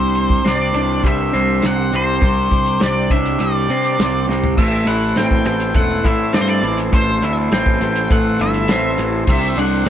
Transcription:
Already playing: C2 C3 C4 D4 G4 C5
0.15 closed hi-hat
0.30 kick
0.44 C2 C4 D5, snare, closed hi-hat
0.74 C2 D4, closed hi-hat
1.04 C2 G3 E5, kick, closed hi-hat
1.33 C2 C4, closed hi-hat
1.62 C2 C3 F#5, snare, closed hi-hat
1.92 C2 C4 C5, closed hi-hat
2.21 C2 C3 D5, kick, closed hi-hat
2.51 C2, kick, closed hi-hat
2.66 closed hi-hat
2.80 C2 C4 D5, snare, closed hi-hat
3.10 C2 D4 E5, kick, closed hi-hat
3.25 closed hi-hat
3.40 C2 G3 D5, closed hi-hat
3.69 C3 C4, closed hi-hat
3.84 closed hi-hat
3.99 C2 C3, snare, closed hi-hat
4.28 C2 C4, snare
4.44 floor tom
4.57 A1 A2 E4 A4 C5 E5, kick, crash
4.86 A1 E4 F#5, closed hi-hat
5.16 A1 C4 G5, snare, closed hi-hat
5.31 kick
5.45 A1 E3 G5, closed hi-hat
5.60 closed hi-hat
5.74 E1 A3 F#5, kick, closed hi-hat
6.04 A2 E4 E5, kick, closed hi-hat
6.33 G2 C4 D5, snare, closed hi-hat
6.41 C5
6.48 D5
6.63 A1 E3, closed hi-hat
6.78 closed hi-hat
6.92 A1 A2 C5, kick, closed hi-hat
7.21 D2 E4 E5, closed hi-hat
7.51 A1 C4 G5, snare, closed hi-hat
7.66 kick
7.80 A1 E3, snare, closed hi-hat
7.95 closed hi-hat
8.10 A1 A3 F#5, kick, closed hi-hat
8.40 G1 E4 E5, closed hi-hat
8.54 closed hi-hat
8.68 A1 C4, snare, closed hi-hat
8.98 A1 E3, closed hi-hat
9.27 C2 C3 D4 G4 E5, kick, crash
9.57 C2 D4 F#5, closed hi-hat
9.85 C2, closed hi-hat

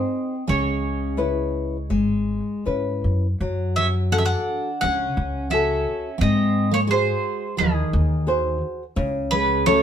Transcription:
Already playing: C4 D#4 G#4 C5 D#5
0.47 C#2 C#3 G#3 C#5
1.17 C#4 E4 B4
1.90 G#1 G#3
2.65 G#2 C#4 E4 B4
3.04 F#2
3.40 F#2 F#3
3.76 C#4 E5
4.12 C#4 F#4 G#4 A4 F#5
4.18 C#4 E5
4.25 D4 F#5
4.81 C#2 C#3 C#4 F#5
5.17 C#2
5.50 C#4 F#4 G#4 A4 E5
6.18 G#2 C4 D#5
6.23 G#3
6.71 A#3 C#5
6.87 G#3 C5
6.92 F#4 G#4 C5
7.57 D#2 D#3 G#4
7.93 D#2
8.27 F#4 G#4 C5
8.96 C#2 C#3
9.31 G#3 B4
9.66 A3 C#4 F#4 A4 C#5

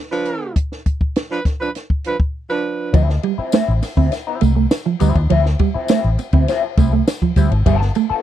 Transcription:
0.10 F3 D4 B4
0.25 closed hi-hat
0.56 kick, closed hi-hat
0.72 snare
0.86 kick, closed hi-hat
1.01 kick
1.16 snare, closed hi-hat
1.30 F3 D4 B4
1.45 kick, snare, closed hi-hat
1.60 F3 D4 B4
1.75 snare, closed hi-hat
1.90 kick
2.04 F3 D4 B4, closed hi-hat
2.20 kick
2.49 F3 D4 B4
2.93 D2 F3 C4 E4, kick, ride bell, tambourine
3.09 muted clean electric guitar stroke, snare
3.23 G3, muted clean electric guitar stroke, ride bell
3.38 F3 C4 E4, muted fingered electric bass stroke
3.52 F3 A3 C4 E4, snare, ride bell, tambourine
3.68 A1
3.83 muted clean electric guitar stroke, snare, open hi-hat, ride bell, tambourine
3.97 D2 F3 C4 E4, kick
4.12 muted clean electric guitar stroke, snare, hi-hat pedal, ride bell, tambourine
4.27 F3 C4 E4
4.41 C2 A3, muted clean electric guitar stroke, ride bell, tambourine
4.55 A3, muted clean electric guitar stroke
4.71 muted clean electric guitar stroke, snare, ride bell, tambourine
4.86 F3, muted clean electric guitar stroke
5.00 D2 F3 G3 C4 E4, ride bell, tambourine
5.15 D#2, muted clean electric guitar stroke, kick, ride bell
5.30 D2 F3 C4 E4, ride bell
5.46 muted clean electric guitar stroke, snare
5.59 G3, muted clean electric guitar stroke, kick, ride bell
5.74 F3 C4 E4, muted fingered electric bass stroke
5.88 F3 A3 C4 E4, snare, ride bell, tambourine
6.04 A1
6.19 muted clean electric guitar stroke, ride bell, tambourine
6.33 D2 F3 C4 E4, kick, ride bell
6.48 F3 C4 E4, muted clean electric guitar stroke, snare, ride bell, tambourine
6.63 muted clean electric guitar stroke
6.77 C2 F3 A3 C4 E4, kick, ride bell, tambourine
6.93 A3, muted clean electric guitar stroke
7.07 muted clean electric guitar stroke, snare, ride bell, tambourine
7.22 F3, muted clean electric guitar stroke, kick
7.36 D2 F3 G3 C4 E4, kick, ride bell, tambourine
7.51 G#1, muted clean electric guitar stroke, ride bell
7.66 G1 G3 B3 F4 A4, kick, ride bell, tambourine
7.81 muted clean electric guitar stroke, snare
7.95 A3, muted clean electric guitar stroke, ride bell, tambourine
8.10 B3 F4 A4, muted fingered electric bass stroke

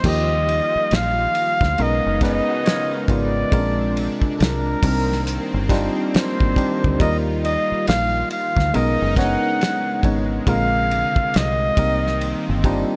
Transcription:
0.02 D#2 D#3 F3 G3 A#3 D#4 F4 G4, kick, crash
0.08 D#5
0.49 ride
0.76 muted fingered electric bass stroke
0.91 A#1, snare, ride
0.95 F5
1.35 ride
1.61 D2, kick, snare
1.78 B1 C#3 G#3 B3 C#4 D#4 A#4, ride
1.82 D#5
2.06 F#1
2.21 G#3 B3 C#4 D#4 B4 D#5, kick, snare, ride
2.49 F#4 D#5
2.65 F4 C#5, snare, ride
2.91 C#4 A#4
3.08 G#1 C#3 G#3 B3 D#4 F4 D5, kick, ride
3.52 A#1 C3 G#3 C4 C#4 D4 F4 A#4, kick, ride
3.59 D4
3.97 ride
4.22 muted fingered electric bass stroke, kick
4.37 A4, ride
4.41 C2 A#4, snare
4.82 C2 D#3 G3 A#3 C4 D4 D#4 A#4, kick, open hi-hat, ride
5.12 snare
5.27 hi-hat pedal, ride
5.54 G1
5.69 G3 C4 D4 D#4 F4, kick, snare, ride
6.09 D5
6.14 C5, muted fingered electric bass stroke, snare, ride
6.40 G#1, kick
6.56 G3 C4 D4 D#4 G4, kick, ride
6.84 D2, kick
6.99 D#2 G3 A#3 D#4 F4 A#4 D#5, kick, ride
7.45 D#5, ride
7.72 muted fingered electric bass stroke
7.87 A#1 F5, snare, ride
8.30 F5, ride
8.57 D2, kick, snare
8.74 B1 C#3 G#3 B3 C#4 D#4 A#4 D#5, ride
9.02 F#1
9.16 G#3 B3 C#4 D4 C#5 F#5, kick, snare, ride
9.25 D#4
9.61 snare, ride
10.03 G#1 G#3 B3 C#4 D#4 C#5, kick, ride
10.47 A#1 C3 D3 G#3 C4 F4 A#4 F5, kick, ride
10.91 ride
11.16 muted fingered electric bass stroke, kick
11.34 C2 D#5, snare, ride
11.77 C2 D#3 G3 A#3 C4 D#4 A#4, kick, ride
12.07 snare
12.21 ride
12.49 G1
12.64 G3 C4 D4 D#4 F4, kick, ride

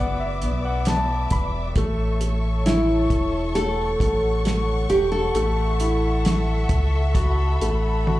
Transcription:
Already playing: F#1 F#3 B4 D5 E5 D6
0.00 B3 F#5
0.20 E5
0.41 B1 B3, closed hi-hat
0.65 F#5
0.85 B3 A5, snare, closed hi-hat
1.30 E1 B5, kick, closed hi-hat
1.76 A1 A3 A4 C#5 C#6, kick, closed hi-hat
2.21 A3, closed hi-hat
2.66 E4, snare, closed hi-hat
3.10 E1, kick, closed hi-hat
3.55 A3 A4 F#5, closed hi-hat
4.00 A1 A3, kick, closed hi-hat
4.45 A3, snare, closed hi-hat
4.90 E1 G4, closed hi-hat
5.12 A4
5.34 A1 A3 A4 E5, closed hi-hat
5.80 E4, closed hi-hat
6.25 snare, closed hi-hat
6.69 C#2, kick, closed hi-hat
7.14 F#4 B5, kick, closed hi-hat
7.60 A1 A3, closed hi-hat
8.07 F#4, high tom

